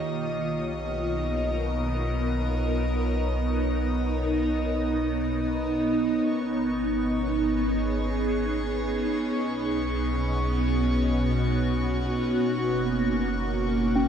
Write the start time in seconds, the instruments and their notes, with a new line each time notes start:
Already playing: ambient pad F4 C#5, violin section D#5 D#6
0.06 sub bass B1, ambient pad B2
0.40 ambient pad D#4
0.70 ambient pad B3 A#4
6.24 sub bass G#1, violin section C#4 C#6
7.33 ambient pad G#4
9.36 sub bass B1, ambient pad B2
10.51 ambient pad F#4
12.42 sub bass F#1, ambient pad A#3
13.96 celesta C#4